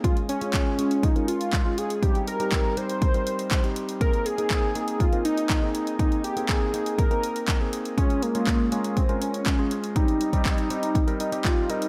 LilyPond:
<<
  \new Staff \with { instrumentName = "Analog synth lead" } { \time 4/4 \key aes \major \tempo 4 = 121 f'8 des'4. ees'8 f'4 aes'8 | g'8 bes'4 c''2 r8 | bes'8 aes'4. f'8 ees'4. | ees'8 g'8 aes'4 bes'4. r8 |
des'8 bes4. c'8 des'4 r8 | ees'2~ ees'8 ees'8 f'8 ees'8 | }
  \new Staff \with { instrumentName = "Electric grand piano" } { \time 4/4 \key aes \major <aes des' f' aes'>8. <aes des' f' aes'>8. <aes des' f' aes'>8 r16 <aes des' f' bes'>4 <aes des' f' aes'>8. | <g c' ees' g'>8. <g c' ees' g'>8. <g c' ees' g'>8 r16 <g c' ees' bes'>4 <g c' ees' g'>8. | <bes c' ees' aes'>8. <bes c' ees' aes'>8. <bes c' ees' aes'>8 r16 <bes c' ees' bes'>4 <bes c' ees' aes'>8. | <bes c' ees' aes'>8. <bes c' ees' aes'>8. <bes c' ees' aes'>8 r16 <bes c' ees' bes'>4 <bes c' ees' aes'>8. |
<aes des' f' aes'>8. <aes des' f' aes'>8. <aes des' f' aes'>8 r16 <aes des' f' bes'>4 <aes des' f' aes'>8. | <g c' ees' g'>8. <g c' ees' g'>8. <g c' ees' g'>8 r16 <g c' ees' bes'>8 <g c' ees' g'>8. <g c' ees' bes'>8 | }
  \new DrumStaff \with { instrumentName = "Drums" } \drummode { \time 4/4 <hh bd>16 hh16 hh16 hh16 <hc hh bd>8 hh16 hh16 <hh bd>16 hh16 hh16 hh16 <hc hh bd>8 hh16 hh16 | <hh bd>16 hh16 hh16 hh16 <hc hh bd>8 hh16 hh16 <hh bd>16 hh16 hh16 hh16 <hc hh bd>16 hh16 hh16 hh16 | <hh bd>16 hh16 hh16 hh16 <hc hh bd>8 hh16 hh16 <hh bd>16 hh16 hh16 hh16 <hc hh bd>8 hh16 hh16 | <hh bd>16 hh16 hh16 hh16 <hc hh bd>8 hh16 hh16 <hh bd>16 hh16 hh16 hh16 <hc hh bd>8 hh16 hh16 |
<hh bd>16 hh16 hh16 hh16 <hc hh bd>8 hh16 hh16 <hh bd>16 hh16 hh16 hh16 <hc hh bd>8 hh16 hh16 | <hh bd>16 hh16 hh16 <hh bd>16 <hc hh bd>16 hh16 hh16 hh16 <hh bd>16 hh16 hh16 hh16 <hc hh bd>8 hh16 hh16 | }
>>